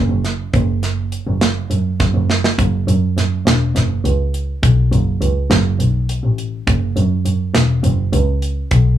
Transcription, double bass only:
0.09 F#1
0.54 F#1
1.27 F#1
1.70 F#2
2.00 F#1
2.14 F#1
2.59 F#1
2.87 F#2
3.17 F#2
3.46 E1
3.75 F#1
4.05 C#2
4.63 B1
4.92 F#1
5.21 C#2
5.50 F#1
5.79 B1
6.23 A1
6.67 F#1
6.96 F#2
7.25 F#2
7.55 E1
7.84 F#1
8.13 C#2
8.71 B1

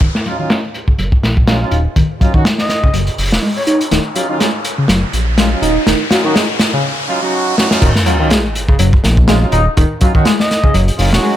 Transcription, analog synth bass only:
0.01 D#1
0.98 F#1
1.23 A#1
1.72 D#1
1.96 D#1
2.94 F#1
3.18 F#1
3.32 D#1
3.92 D#1
4.89 F#1
5.13 A#1
5.62 D#1
5.87 D#1
7.82 D#1
8.80 F#1
9.04 A#1
9.53 D#1
9.77 D#1
10.75 F#1
10.99 F#1
11.13 D#1

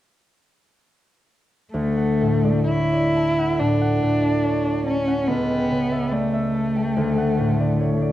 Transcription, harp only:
1.74 D2
1.97 F#5
2.21 A2
2.45 D5
2.69 C#5
2.93 D5
3.16 A5
3.38 F#5
3.60 A2
3.81 F#5
4.02 A2
4.22 D5
4.44 C#5
4.65 D5
4.87 A5
5.08 F#5
5.29 C#2
5.51 G5
5.71 C#3
5.92 E5
6.13 D5
6.33 E5
6.54 A5
6.76 G5
6.97 D2
7.18 F#5
7.39 A2
7.60 D5
7.80 C#5
8.02 D5

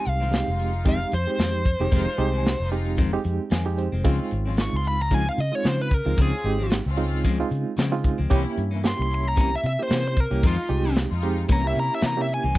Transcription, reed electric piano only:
Already playing: G#3 C4 D#4 G4
0.31 G#3 C4 D#4 G4
0.85 G#3 C4 D#4 G4
1.27 G#3 C4 D#4 G4
1.81 G#3 C4 D#4 G4
2.18 G#3 C4 D#4 G4
2.72 G#3 C4 D#4 G4
3.13 G#3 C4 D#4 G4
3.51 G#5
3.65 G#3 C4 D#4 G4
3.78 C5
4.04 G#3 C4 D#4 F4
4.58 G#3 C4 D#4 F4
5.11 G#3 C4 D#4 F4
5.52 G#3 C4 D#4 F4
6.06 G#3 C4 D#4 F4
6.45 G#3 C4 D#4 G4
6.97 G#3 C4 D#4 F4
7.40 G#3 C4 D#4 F4
7.92 G#3 C4 D#4 F4
8.30 A#3 C#4 E4 G4
8.84 A#3 C#4 E4 G4
9.37 A#3 C#4 E4 G4
9.79 A#3 C#4 E4 G4
10.30 A#3 C#4 E4 G4
10.69 G#3 C4 D#4 G4
11.23 G#3 C4 D#4 G4
11.64 A#3 C#4 E4 G4
12.17 A#3 C#4 E4 G4

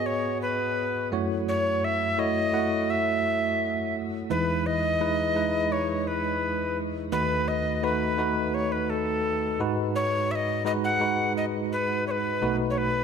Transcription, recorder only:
0.06 C#5
0.42 B4
1.48 C#5
1.84 E5
2.19 D#5
2.90 E5
4.30 B4
4.66 D#5
5.72 C#5
6.07 B4
7.12 B4
7.48 D#5
7.84 B4
8.54 C#5
8.72 B4
8.90 A4
9.96 C#5
10.31 E5
10.35 D#5
10.66 D#5
10.84 F#5
11.37 D#5
11.72 B4
12.07 B4 C#5
12.70 C#5
12.78 B4

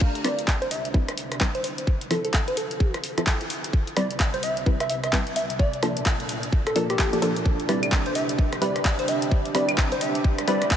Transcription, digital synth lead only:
0.25 D5
0.62 C5
0.71 E5
1.55 C5
1.64 C5
2.11 A4
2.25 A4
2.48 C5
2.57 A4
3.97 D5
4.34 C5
4.44 E5
4.81 E5
4.90 E5
5.04 E5
5.36 E5
5.60 D5
6.67 A4
6.90 G4
6.99 G4
7.13 G4
7.69 D5
8.06 C5
8.15 E5
8.62 D5
8.99 C5
9.09 E5
9.55 D5
9.92 C5
10.01 E5
10.48 D5

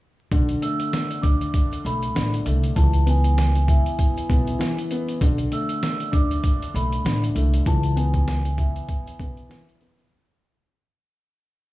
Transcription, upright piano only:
0.32 D3
0.62 A3
1.22 D4
1.85 A3
2.16 D3
2.45 A3
2.77 E3
3.06 B3
3.68 E4
4.29 B3
4.59 E3
4.91 B3
5.21 D3
5.51 A3
6.12 D4
6.75 A3
7.06 D3
7.35 A3
7.67 E3
7.96 B3
8.58 E4
9.19 B3
9.49 E3
9.81 B3

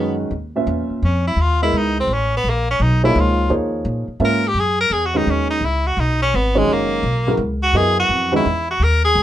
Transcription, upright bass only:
Already playing: F#2
0.31 D#2
0.67 E2
0.90 muted upright bass stroke
1.02 F2
1.36 D#2
1.72 C#2
2.07 A1
2.44 A#1
2.80 B1
3.15 C#2
3.50 D#2
3.85 A#2
4.08 muted upright bass stroke
4.20 G#2
4.54 F#2
4.90 E2
5.27 D#2
5.61 C#2
5.97 B1
6.34 G#1
6.68 F#1
7.03 B1
7.37 C#2
7.73 F#2
8.09 F2
8.46 E2
8.80 D#2
9.15 C#2

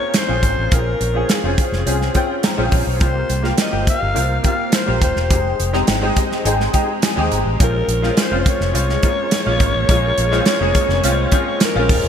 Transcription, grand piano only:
Already playing: A#3 C4 C#4 F4 G#4 A#4
0.27 C4 C#4 F4 G#4
0.71 C4 C#4 F4 G#4
1.14 C4 C#4 F4 G#4
1.44 C4 C#4 F4 G#4
1.86 C4 C#4 F4 G#4
2.15 C4 C#4 F4 G5
2.43 A#5
2.57 C4 C#4 F4 G#4 G#5
2.72 F5
2.99 A#3 C4 F4 G4
3.42 A#3 C4 F4 G4
3.71 A#3 C4 F4 G4
4.14 A#3 C4 F4 A#4
4.43 A#3 C4 F4 G4
4.86 A#3 C4 F4 G4
5.30 G#3 C4 D#4 G4
5.73 G#3 C4 D#4 G4
6.01 G#3 C4 D#4 G4
6.17 D#5
6.44 G#3 C4 D#4 G#4 G5
6.73 G#3 C4 D#4 G4 G5
7.02 G#5
7.16 G#3 C4 D#4 G4
7.31 A#5
7.59 G#3 C4 C#4 F4
8.02 G#3 C4 C#4 F4
8.30 G#3 C4 C#4 F4
8.73 G#3 C4 C#4 F4
9.02 G#3 A#3 C#4 F4
9.46 G#3 A#3 C#4 F4
9.89 G#3 A#3 C#4 F4
10.31 G#3 C4 C#4 F4
10.60 G#3 A#3 C#4 G#4
11.03 G#3 C4 C#4 F4
11.32 G#3 C4 C#4 F4
11.75 G#3 C4 C#4 F4

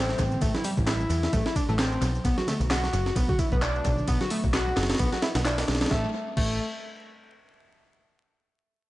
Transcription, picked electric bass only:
Already playing: A1
0.19 A1
0.41 A1
0.77 A1
1.10 E2
1.33 A1
1.68 A1
2.01 B1
2.25 B1
2.60 B1
2.93 F#1
3.16 B1
3.52 B1
3.85 B1
4.08 B1
4.44 B1
4.77 F#1
4.99 B1
5.35 B1
5.68 B1
5.91 A1
6.37 A1

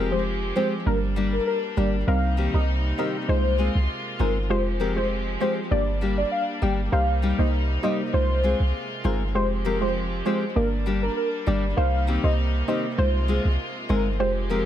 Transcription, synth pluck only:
0.12 F3 G#3 C4 G4
0.56 F3 G#3 C4 G4
0.86 G3 A#3 D4 A#4
1.77 G3 A#3 D4 A#4
2.07 G3 C4 D#4 A#4
2.54 G3 C4 D#4 A#4
2.98 G3 C4 D#4 A#4
3.29 G#3 D#4 F4 C5
4.20 G#3 D#4 F4 C5
4.50 G#3 F4 G4 C5
4.96 G#3 F4 G4 C5
5.41 G#3 F4 G4 C5
5.71 A#3 D4 G4 D5
6.62 A#3 D4 G4 D5
6.92 A#3 D#4 G4 C5
7.38 A#3 D#4 G4 C5
7.83 A#3 D#4 G4 C5
8.13 G#3 D#4 F4 C5
9.04 G#3 D#4 F4 C5
9.35 G#3 F4 G4 C5
9.81 G#3 F4 G4 C5
10.25 G#3 F4 G4 C5
10.56 A#3 D4 G4 D5
11.47 A#3 D4 G4 D5
11.77 A#3 D#4 G4 C5
12.23 A#3 D#4 G4 C5
12.68 A#3 D#4 G4 C5
12.98 G#3 D#4 F4 C5
13.89 G#3 D#4 F4 C5
14.19 G#3 F4 G4 C5

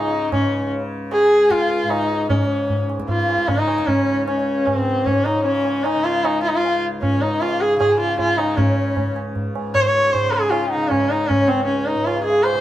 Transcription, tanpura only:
Already playing: C#2 G#2
0.00 C#3
0.60 C#3
1.21 C#2
1.83 G#2
2.29 G#2
2.90 C#3
3.51 C#3
4.12 C#2
4.74 G#2
5.33 C#3
5.95 C#3
6.55 C#2
7.16 G#2
7.75 C#3
8.36 C#3
8.95 C#2
9.53 G#2
10.13 C#3
10.75 C#3
11.35 C#2
11.95 G#2
12.54 C#3

